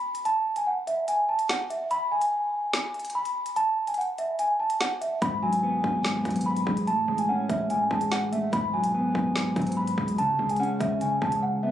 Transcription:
Already playing: B5
0.15 closed hi-hat
0.25 A5, closed hi-hat
0.56 G#5, closed hi-hat
0.67 F#5
0.87 E5, closed hi-hat
1.08 G#5, closed hi-hat
1.29 A5
1.39 closed hi-hat
1.49 F#5, snare
1.70 E5, closed hi-hat
1.91 B5, closed hi-hat
2.12 G#5
2.21 closed hi-hat
2.73 snare
2.94 closed hi-hat
2.99 closed hi-hat
3.05 closed hi-hat
3.10 closed hi-hat
3.15 B5
3.25 closed hi-hat
3.46 closed hi-hat
3.56 A5, closed hi-hat
3.87 G#5, closed hi-hat
3.94 F#5, closed hi-hat
4.01 closed hi-hat
4.18 E5, closed hi-hat
4.39 G#5, closed hi-hat
4.60 A5
4.70 closed hi-hat
4.81 F#5, snare
5.01 E5, closed hi-hat
5.22 G#1 G#2 B5, kick, closed hi-hat
5.42 F#3 G#5
5.53 closed hi-hat
5.63 B3
5.84 G#1, kick
6.05 G#2, snare
6.15 D#2
6.25 G#1 F#3, kick, closed hi-hat
6.30 closed hi-hat
6.36 closed hi-hat
6.41 closed hi-hat
6.46 B5
6.56 closed hi-hat
6.67 A1 G#3, kick
6.77 closed hi-hat
6.87 A2 A5, closed hi-hat
7.08 A1 G#3
7.18 G#5, closed hi-hat
7.29 C#4 F#5
7.49 A1 E5, kick, closed hi-hat
7.70 A2 G#5, closed hi-hat
7.91 A1 G#3 A5, kick
8.01 closed hi-hat
8.12 F#5, snare
8.32 A3 E5, closed hi-hat
8.53 G#1 G#2 B5, kick, closed hi-hat
8.74 B2 F#3 G#5
8.84 G#1, closed hi-hat
8.94 B3
9.15 G#1, kick
9.36 D#2 G#2, snare
9.56 G#2 F#3, kick, closed hi-hat
9.62 closed hi-hat
9.67 closed hi-hat
9.72 closed hi-hat
9.77 B5
9.87 closed hi-hat
9.98 C#2 G#3, kick
10.08 closed hi-hat
10.18 C#3 A5, closed hi-hat
10.29 C#3
10.39 C#2 G#3
10.49 G#5, closed hi-hat
10.56 C#4 F#5, closed hi-hat
10.63 closed hi-hat
10.80 C#2 E5, kick, closed hi-hat
11.01 C#3 G#5, closed hi-hat
11.22 C#2 G#3 A5, kick
11.32 closed hi-hat
11.43 F#5
11.63 B3 E5

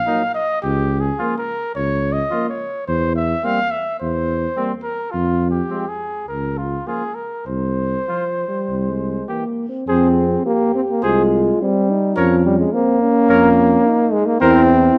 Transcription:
Already playing: F5
0.07 F#3 A#3 D#4
0.35 D#5
0.62 C#2 G4
1.00 G#4
1.19 F3 A#3 F4
1.38 A#4
1.75 C#2 C#5
2.13 D#5
2.31 F3 A#3 F4
2.49 C#5
2.88 E2 C5
3.16 E5
3.43 G3 A#3 C4 F5
3.71 E5
4.00 E2 C5
4.56 G3 A#3 C4
4.83 A#4
5.11 F2 F4
5.51 G4
5.69 F3 G#3 C4
5.89 G#4
6.28 C#2 A#4
6.58 F4
6.86 F3 A#3 F4 G#4
7.15 A#4
7.47 C2 C5
8.07 F3 F4
8.48 G3
8.69 C2
8.89 G#3
9.28 E3 A#3 G4
9.69 C4
9.88 F2 C4 G#4 C5
10.46 A#3 G4
10.75 C4
10.90 A#3
11.03 C2 G#3 F4 G#4 C5
11.62 G3 C4
11.90 D#4
12.16 F2 F3 C#4 A#4 C#5
12.46 G3
12.59 G#3
12.73 A#3 C4
13.02 C#4
13.29 F2 A#4 C#5
13.86 D#4
14.13 G#3
14.26 A#3
14.40 E2 C4 E4 A#4 C5

